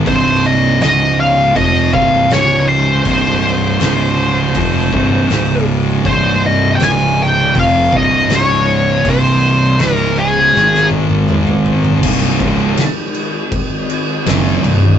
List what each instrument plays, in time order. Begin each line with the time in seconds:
0.06 fingered electric bass C1, distorted electric guitar C2 G2 C3, lead electric guitar C5, kick, open hi-hat
0.46 lead electric guitar D#5
0.81 fingered electric bass C#1, distorted electric guitar C#2 G#2 C#3, lead electric guitar D#5, snare, open hi-hat
1.20 lead electric guitar F5
1.56 fingered electric bass F1, distorted electric guitar F2 C3 F3, lead electric guitar D#5, kick, open hi-hat
1.93 fingered electric bass C1, distorted electric guitar C2 G2 C3, lead electric guitar F5, kick
2.30 fingered electric bass C#1, distorted electric guitar C#2 G#2 C#3, lead electric guitar C#5, snare, open hi-hat
2.69 lead electric guitar C5
3.05 fingered electric bass C1, distorted electric guitar C2 G2 C3, kick, open hi-hat
3.79 fingered electric bass C#1, distorted electric guitar C#2 G#2 C#3, snare, open hi-hat
4.54 fingered electric bass F1, distorted electric guitar F2 C3 F3, kick, open hi-hat
4.92 fingered electric bass C1, distorted electric guitar C2 G2 C3, kick
5.30 fingered electric bass C#1, distorted electric guitar C#2 G#2 C#3, snare, open hi-hat
6.05 fingered electric bass C1, distorted electric guitar C2 G2 C3, lead electric guitar C5, kick, open hi-hat
6.46 lead electric guitar D#5
6.75 lead electric guitar G5
6.80 fingered electric bass C#1, distorted electric guitar C#2 G#2 C#3, lead electric guitar G#5, snare, open hi-hat
7.23 lead electric guitar G5
7.55 fingered electric bass F1, distorted electric guitar F2 C3 F3, lead electric guitar F5, kick, open hi-hat
7.93 fingered electric bass C1, distorted electric guitar C2 G2 C3, kick
7.97 lead electric guitar D#5
8.29 fingered electric bass C#1, distorted electric guitar C#2 G#2 C#3, snare, open hi-hat
8.36 lead electric guitar C#5
9.05 fingered electric bass C1, distorted electric guitar C2 G2 C3, kick, open hi-hat
9.10 lead electric guitar C5
9.79 fingered electric bass C#1, distorted electric guitar C#2 G#2 C#3, synth drone G#3 D#4, lead electric guitar A#4, snare, open hi-hat
10.19 lead electric guitar G#4
10.54 fingered electric bass G#1, distorted electric guitar G#2 D#3 G#3, snare
10.74 snare
10.91 high tom
11.10 high tom
11.29 mid tom
11.47 mid tom
11.66 floor tom
11.84 floor tom
12.02 fingered electric bass C1, distorted electric guitar C2 G2 C3, synth drone D#3 C4 D5, kick, crash
12.40 fingered electric bass C#1, distorted electric guitar C#2 G#2 C#3, kick, crash
12.77 snare, crash
13.14 crash
13.52 kick, crash
13.90 crash
14.26 fingered electric bass F#1, distorted electric guitar F#2 C#3 F#3, snare, crash
14.63 fingered electric bass C1, distorted electric guitar C2 G2, crash